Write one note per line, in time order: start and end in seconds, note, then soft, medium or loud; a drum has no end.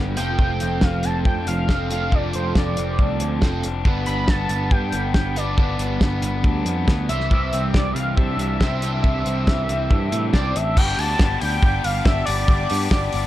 0.00 0.17 G1 medium
0.00 0.16 G3 medium
0.00 0.17 G3 medium
0.00 0.17 B3 medium
0.00 0.18 B3 medium
0.00 0.17 D4 medium
0.00 0.17 B4 medium
0.16 0.38 F1 medium
0.16 1.67 F3 medium
0.16 0.38 F3 medium
0.16 1.68 A3 medium
0.16 1.68 C4 medium
0.16 1.68 F4 medium
0.16 1.69 A4 medium
0.16 0.85 G5 loud
0.16 closed hi-hat medium
0.39 0.60 F1 medium
0.39 0.81 F3 medium
0.39 kick loud
0.60 0.82 F1 medium
0.60 1.03 C4 medium
0.60 closed hi-hat medium
0.81 1.04 F1 medium
0.81 1.46 F3 medium
0.81 1.06 F5 medium
0.81 kick medium
0.81 snare loud
1.03 1.25 F1 medium
1.03 1.67 C4 medium
1.03 1.26 A5 medium
1.03 closed hi-hat medium
1.25 1.46 F2 medium
1.25 1.90 D4 medium
1.25 1.46 G5 medium
1.25 kick loud
1.47 1.68 F1 medium
1.47 2.11 F3 medium
1.47 1.88 F5 loud
1.47 closed hi-hat medium
1.68 1.89 F3 medium
1.68 1.89 A3 medium
1.68 2.33 C4 medium
1.68 1.90 C4 medium
1.68 1.90 F4 medium
1.68 1.90 A4 medium
1.68 kick loud
1.68 snare medium
1.90 3.40 F3 medium
1.90 3.41 A3 medium
1.90 3.41 C4 medium
1.90 2.98 D4 medium
1.90 3.41 F4 medium
1.90 3.42 A4 medium
1.90 2.16 F5 loud
1.90 closed hi-hat medium
2.12 2.34 F1 medium
2.12 2.55 F3 medium
2.12 2.35 D5 medium
2.12 kick loud
2.33 2.55 F1 medium
2.33 2.76 C4 medium
2.33 2.55 C5 medium
2.33 closed hi-hat medium
2.55 2.76 F1 medium
2.55 3.19 F3 medium
2.55 3.39 D5 medium
2.55 kick loud
2.55 snare loud
2.77 2.98 F1 medium
2.77 3.41 C4 medium
2.77 closed hi-hat medium
2.99 3.20 C2 medium
2.99 3.63 D4 medium
2.99 kick loud
3.20 3.41 D2 medium
3.20 3.85 F3 medium
3.20 closed hi-hat medium
3.41 3.63 F1 medium
3.41 3.62 F3 medium
3.41 3.63 A3 medium
3.41 3.85 C4 medium
3.41 3.63 C4 medium
3.41 3.63 F4 medium
3.41 3.63 A4 medium
3.41 kick loud
3.41 snare medium
3.63 3.84 F1 medium
3.63 4.70 D4 medium
3.63 closed hi-hat medium
3.85 4.06 G1 medium
3.85 5.38 G3 medium
3.85 4.06 B3 medium
3.85 5.36 B3 medium
3.85 5.37 D4 medium
3.85 5.35 B4 medium
3.85 kick loud
4.06 4.28 G1 medium
4.06 4.28 B3 medium
4.06 4.30 B5 medium
4.06 closed hi-hat medium
4.28 4.49 B3 medium
4.28 4.72 A5 loud
4.28 kick loud
4.28 snare loud
4.49 4.71 G1 medium
4.49 4.92 B3 medium
4.49 closed hi-hat medium
4.70 4.92 G2 medium
4.70 5.35 D4 medium
4.70 5.14 G5 medium
4.70 kick loud
4.92 5.14 G1 medium
4.92 5.13 B3 medium
4.92 closed hi-hat medium
5.14 5.57 G1 medium
5.14 5.56 B3 medium
5.14 5.38 G5 medium
5.14 kick loud
5.14 snare loud
5.36 5.57 G3 medium
5.36 5.57 B3 medium
5.36 6.44 D4 medium
5.36 5.58 D4 medium
5.36 5.57 B4 medium
5.36 5.80 D5 medium
5.36 closed hi-hat medium
5.57 5.77 G1 medium
5.57 7.10 G3 medium
5.57 5.78 B3 medium
5.57 7.09 B3 medium
5.57 7.10 D4 medium
5.57 7.09 B4 medium
5.57 kick loud
5.78 6.00 G1 medium
5.78 6.00 B3 medium
5.78 closed hi-hat medium
6.01 6.21 G1 medium
6.01 6.21 B3 medium
6.01 kick loud
6.01 snare loud
6.22 6.43 G1 medium
6.22 6.65 B3 medium
6.22 closed hi-hat medium
6.44 6.65 D2 medium
6.44 7.12 D4 medium
6.44 kick loud
6.65 6.87 F2 medium
6.65 6.87 B3 medium
6.65 closed hi-hat medium
6.88 7.08 D2 medium
6.88 7.09 B3 medium
6.88 kick loud
6.88 snare loud
7.09 7.30 C2 medium
7.09 8.59 C3 medium
7.09 7.30 E3 medium
7.09 8.59 E3 medium
7.09 8.61 G3 medium
7.09 8.60 C4 medium
7.09 8.60 E4 medium
7.09 8.60 C5 medium
7.09 7.70 E5 loud
7.09 closed hi-hat medium
7.20 snare soft
7.31 7.52 C2 medium
7.31 7.73 E3 medium
7.31 kick loud
7.53 7.74 C2 medium
7.53 7.95 C4 medium
7.53 closed hi-hat medium
7.73 7.94 C2 medium
7.73 8.38 E3 medium
7.73 7.95 D5 medium
7.73 kick loud
7.73 snare loud
7.93 8.16 C2 medium
7.93 8.60 C4 medium
7.93 8.16 F5 loud
7.93 closed hi-hat medium
8.17 8.37 C3 medium
8.17 8.81 D4 medium
8.17 8.99 E5 loud
8.17 kick loud
8.37 8.59 C2 medium
8.37 9.03 E3 medium
8.37 closed hi-hat medium
8.60 9.03 C2 medium
8.60 8.81 C3 medium
8.60 8.81 E3 medium
8.60 8.82 G3 medium
8.60 9.24 C4 medium
8.60 8.81 C4 medium
8.60 8.82 E4 medium
8.60 8.82 C5 medium
8.60 kick medium
8.60 snare loud
8.82 10.32 C3 medium
8.82 10.32 E3 medium
8.82 10.32 G3 medium
8.82 10.32 C4 medium
8.82 9.89 D4 medium
8.82 10.33 E4 loud
8.82 10.33 C5 medium
8.82 closed hi-hat medium
9.02 9.25 C2 medium
9.02 9.46 E3 medium
9.02 10.28 E5 loud
9.02 kick loud
9.25 9.47 C2 medium
9.25 9.68 C4 medium
9.25 closed hi-hat medium
9.47 9.68 C2 medium
9.47 10.12 E3 medium
9.47 kick loud
9.47 snare loud
9.69 9.90 C2 medium
9.69 10.33 C4 medium
9.69 closed hi-hat medium
9.90 10.11 G2 medium
9.90 10.54 D4 medium
9.90 kick loud
10.12 10.33 A2 medium
10.12 10.77 E3 medium
10.12 closed hi-hat medium
10.33 10.55 C2 medium
10.33 10.53 C3 medium
10.33 10.54 E3 medium
10.33 10.54 G3 medium
10.33 10.76 C4 medium
10.33 10.54 C4 medium
10.33 10.54 E4 medium
10.33 10.54 C5 medium
10.33 10.58 D5 medium
10.33 kick loud
10.33 snare loud
10.55 10.76 A1 medium
10.55 10.76 D4 medium
10.55 10.79 E5 loud
10.55 closed hi-hat medium
10.76 10.93 G1 loud
10.76 10.97 B3 loud
10.76 10.98 D4 medium
10.76 13.27 G4 medium
10.76 10.98 G4 loud
10.76 13.27 D5 medium
10.76 11.00 G5 loud
10.76 13.27 B5 medium
10.76 13.27 D6 medium
10.76 kick loud
10.76 crash loud
10.98 11.14 D2 medium
10.98 11.18 B3 medium
10.98 11.19 D4 medium
10.98 11.20 G4 medium
10.98 11.41 A5 loud
10.98 open hi-hat medium
11.19 11.36 G1 medium
11.19 11.39 B3 medium
11.19 11.41 D4 medium
11.19 11.40 G4 medium
11.19 kick loud
11.19 snare loud
11.40 11.58 D2 medium
11.40 11.60 B3 medium
11.40 11.62 D4 medium
11.40 11.62 G4 loud
11.40 11.85 G5 loud
11.40 open hi-hat medium
11.61 11.79 G1 medium
11.61 11.81 B3 medium
11.61 11.83 D4 loud
11.61 11.83 G4 loud
11.61 kick loud
11.83 12.01 G1 medium
11.83 12.03 B3 medium
11.83 12.05 D4 medium
11.83 12.05 G4 loud
11.83 12.06 F5 loud
11.83 open hi-hat medium
12.04 12.22 G1 loud
12.04 12.25 B3 medium
12.04 12.26 D4 loud
12.04 12.26 G4 loud
12.04 12.25 E5 loud
12.04 kick loud
12.04 snare loud
12.26 12.44 G1 medium
12.26 12.46 B3 medium
12.26 12.47 D4 medium
12.26 12.47 G4 loud
12.26 12.87 D5 loud
12.26 open hi-hat loud
12.47 12.65 G1 loud
12.47 12.67 B3 medium
12.47 12.68 D4 medium
12.47 12.68 G4 medium
12.47 kick loud
12.68 12.87 G2 medium
12.68 12.89 B3 medium
12.68 12.90 D4 medium
12.68 12.90 G4 medium
12.68 open hi-hat medium
12.90 13.08 G1 medium
12.90 13.11 B3 medium
12.90 13.12 D4 medium
12.90 13.12 G4 loud
12.90 13.27 D5 loud
12.90 kick loud
12.90 snare loud
13.12 13.27 G1 medium
13.12 13.27 B3 medium
13.12 13.27 D4 medium
13.12 13.27 G4 medium
13.12 open hi-hat medium